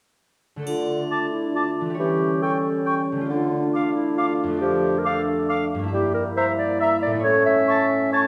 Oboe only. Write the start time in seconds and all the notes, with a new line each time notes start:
1.11 A5
1.56 A5
2.42 G5
2.86 G5
3.75 F5
4.18 F5
5.06 F5
5.49 F5
6.37 E5
6.81 E5
7.70 A5
8.13 A5